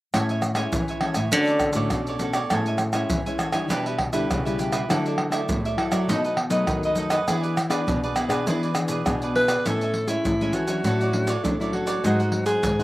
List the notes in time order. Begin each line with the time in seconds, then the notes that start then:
0.14 A2 G#3 C#4 E4 A4 C#5 E5 G#5, pandeiro, tamborim, shaker, surdo
0.29 C#5 E5 G#5, pandeiro, shaker
0.42 muted cavaquinho stroke, pandeiro, tamborim, shaker
0.55 G#3 C#4 E4 C#5 E5 G#5, pandeiro, tamborim, shaker
0.72 E3, pandeiro, shaker, surdo
0.88 C#5 E5 G#5, pandeiro, shaker
1.01 G#3 C#4 E4 A4 C#5 E5 G#5, pandeiro, tamborim
1.14 A2 C#5 E5 G#5, pandeiro, tamborim, shaker
1.32 D3 A3 C#4 F#4 A4 C#5 D5, pandeiro, shaker, surdo
1.47 C#5 D5, pandeiro, shaker
1.51 A4
1.59 muted cavaquinho stroke, pandeiro, tamborim, shaker, surdo
1.73 A2 A3 C#4 F#4 C#5 D5, pandeiro, shaker
1.77 A4
1.90 A2 B2, pandeiro, tamborim, shaker, surdo
2.07 A4 C#5 D5, pandeiro, shaker
2.19 A3 C#4 F#4 A4 C#5 D5, pandeiro, shaker
2.33 A4 C#5 D5, pandeiro, tamborim, shaker
2.50 A2 G#3 C#4 E4 A4 C#5 E5 G#5, pandeiro, tamborim, shaker, surdo
2.66 C#5 E5 G#5, pandeiro, shaker
2.78 muted cavaquinho stroke, pandeiro, tamborim, shaker
2.93 G#3 C#4 E4 C#5 E5 G#5, pandeiro, tamborim, shaker
3.10 E3, pandeiro, shaker, surdo
3.26 G#3 C#4 E4 C#5 E5 G#5, pandeiro, shaker
3.39 A4 C#5 E5 G#5, pandeiro, tamborim, shaker
3.52 E3 G3 D4 E4 C#5 E5 G#5, pandeiro, tamborim, shaker
3.70 B2 D4 G4 B4 E5, pandeiro, shaker, surdo
3.86 G4 B4 E5, pandeiro, shaker
3.98 muted cavaquinho stroke, pandeiro, tamborim, surdo
4.13 D3 G3 D4 E4 G4 B4 E5, pandeiro, shaker
4.31 B2 C#3, pandeiro, tamborim, shaker, surdo
4.45 G3 E4 G4 B4 E5, pandeiro, shaker
4.59 D4 G4 B4 E5, pandeiro, shaker
4.72 G4 B4 E5, pandeiro, tamborim, shaker
4.89 D3 F#3 A3 E4 F#4 A4 D5 E5, pandeiro, tamborim, shaker, surdo
5.06 A4 D5 E5, pandeiro, shaker
5.18 muted cavaquinho stroke, pandeiro, tamborim
5.30 F#3 A3 E4 D5 E5, pandeiro, tamborim, shaker
5.34 A4
5.49 A2, pandeiro, shaker, surdo
5.65 A4 D5 E5, pandeiro, shaker
5.77 F#3 A3 E4 F#4 A4 D5 E5, pandeiro, tamborim
5.92 F#3 A4 D5 E5, pandeiro, tamborim, shaker
6.08 B2 F#3 A3 D#4 A4 B4 D#5, pandeiro, shaker, surdo
6.24 A4 B4 D#5, pandeiro, shaker
6.37 muted cavaquinho stroke, pandeiro, tamborim
6.50 F#3 A3 D#4 A4 B4 D#5, pandeiro, shaker
6.67 F#2 D#3, pandeiro, tamborim, shaker, surdo
6.83 A4 B4 D#5, pandeiro, shaker
6.95 F#3 A3 D#4 A4 B4 D#5, pandeiro, shaker
7.10 A4 B4 D#5, pandeiro, tamborim, shaker
7.28 E3 B3 D4 E4 G#4 B4 D5, pandeiro, tamborim, shaker, surdo
7.43 G#4 B4 D5, pandeiro, shaker
7.57 muted cavaquinho stroke, pandeiro, tamborim, shaker
7.70 B3 D4 G#4 B4 D5, pandeiro, tamborim, shaker
7.88 B2, pandeiro, shaker, surdo
8.03 G#4 B4 D5, pandeiro, shaker
8.16 E4 G#4 B4 D5, pandeiro, tamborim, shaker
8.28 B2 B3 D4 G#4 B4 D5, pandeiro, tamborim, shaker
8.47 E3 E4 G#4 B4 D5, pandeiro, shaker, surdo
8.63 G#4 B4 D5, pandeiro, shaker
8.75 B3 D4 G#4, muted cavaquinho stroke, pandeiro, tamborim, shaker
8.88 B2 G#4 B4 D5, pandeiro, shaker
9.05 B2 B3 D4 G#4, pandeiro, tamborim, shaker, surdo
9.22 G#4 B4 D5, pandeiro, shaker
9.35 E4 G#4 B4 D5, pandeiro
9.48 G#4 B4 D5, pandeiro, tamborim, shaker
9.65 A2 C#4 E4 A4 C#5 E5 G#5, pandeiro, shaker, surdo
9.81 C#5 E5 G#5, pandeiro, shaker
9.94 muted cavaquinho stroke, pandeiro
10.07 G#3 C#4 E4 C#5 E5 G#5, pandeiro, shaker
10.25 A2 E3, pandeiro, shaker, surdo
10.41 G#3 C#4 E4 C#5 E5 G#5, pandeiro, shaker
10.53 E3 F#4 A4 C#5 E5 G#5, pandeiro, shaker
10.67 F#3 C#4 D4 C#5 E5 G#5, pandeiro, shaker
10.83 A2 F#4 A4 C#5, pandeiro, shaker, surdo
10.87 D5
11.01 A4 C#5 D5, pandeiro, shaker
11.12 F#3 C#4 D4, muted cavaquinho stroke, pandeiro
11.27 A4 C#5 D5, pandeiro, shaker
11.43 A2 F#3 A3 C#4 D4, pandeiro, shaker, surdo
11.60 F#3 C#4 D4 E4 A4 C#5 D5, pandeiro, shaker
11.73 F#4 A4 C#5 D5, pandeiro
11.87 A4 C#5 D5, pandeiro, shaker
12.04 G#2 F#3 C4 D#4 G#4 C5 F#5, pandeiro, shaker, surdo
12.20 G#4 C5 F#5, pandeiro, shaker
12.32 F#3 C4 D#4, muted cavaquinho stroke, pandeiro
12.46 G#4 C5 F#5, pandeiro, shaker
12.63 G#2 D#3, pandeiro, shaker, surdo
12.79 F#3 C4 D#4 C5 F#5, pandeiro, shaker